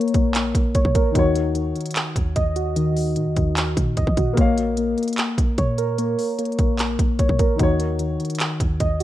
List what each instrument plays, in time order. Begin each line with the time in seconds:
Already playing: synth keys A#3 A#4 C#5, grand piano A#3 A#4 C#5 F5
0.01 closed hi-hat
0.08 closed hi-hat
0.14 808-style bass A#1, synth keys A#3, kick, closed hi-hat
0.35 clap, closed hi-hat
0.55 808-style bass A#1, kick, closed hi-hat
0.75 808-style bass A#1, synth keys C#5, kick, closed hi-hat
0.85 808-style bass A#2, kick
0.95 808-style bass A#1, synth keys A#4, kick, closed hi-hat
1.11 808-style bass D#2, grand piano D#3 D#4, synth keys D#3, kick, closed hi-hat
1.16 grand piano F#4 C#5
1.35 synth keys D#3, closed hi-hat
1.55 synth keys D#3, closed hi-hat
1.75 synth keys D#3, closed hi-hat
1.81 closed hi-hat
1.86 closed hi-hat
1.91 closed hi-hat
1.96 clap, closed hi-hat
2.16 808-style bass D#2, kick, closed hi-hat
2.36 808-style bass D#2, synth keys D#5, kick, closed hi-hat
2.56 synth keys F#4, closed hi-hat
2.76 synth keys D#3, closed hi-hat
2.96 synth keys D#3, open hi-hat
3.16 808-style bass A#2, synth keys D#3, closed hi-hat
3.26 808-style bass D#2
3.36 808-style bass D#2, synth keys D#3, kick, closed hi-hat
3.57 clap, closed hi-hat
3.77 808-style bass A#2, kick, closed hi-hat
3.97 808-style bass D#2, synth keys D#5, kick, closed hi-hat
4.07 808-style bass D#3, kick
4.17 808-style bass A#2, synth keys F#4, kick, closed hi-hat
4.33 808-style bass A#1, grand piano A#3 A#4, synth keys A#3, kick, closed hi-hat
4.38 grand piano C#5 F5
4.57 synth keys A#3, closed hi-hat
4.77 synth keys A#3, closed hi-hat
4.98 synth keys A#3, closed hi-hat
5.03 closed hi-hat
5.08 closed hi-hat
5.13 closed hi-hat
5.18 clap, closed hi-hat
5.38 808-style bass A#1, kick, closed hi-hat
5.58 808-style bass A#2, synth keys C#5, kick, closed hi-hat
5.78 synth keys A#4, closed hi-hat
5.98 synth keys A#3, closed hi-hat
6.18 synth keys A#3, open hi-hat
6.39 synth keys A#3, closed hi-hat
6.45 closed hi-hat
6.52 closed hi-hat
6.59 808-style bass A#1, synth keys A#3, kick, closed hi-hat
6.79 clap, closed hi-hat
6.99 808-style bass A#1, kick, closed hi-hat
7.19 808-style bass A#1, synth keys C#5, kick, closed hi-hat
7.29 808-style bass A#2, kick
7.39 808-style bass A#1, synth keys A#4, kick, closed hi-hat
7.56 808-style bass D#2, grand piano D#3 D#4, synth keys D#3, kick, closed hi-hat
7.61 grand piano F#4 C#5
7.80 synth keys D#3, closed hi-hat
7.99 synth keys D#3, closed hi-hat
8.20 synth keys D#3, closed hi-hat
8.25 closed hi-hat
8.30 closed hi-hat
8.35 closed hi-hat
8.40 clap, closed hi-hat
8.60 808-style bass D#2, kick, closed hi-hat
8.80 808-style bass D#2, synth keys D#5, kick, closed hi-hat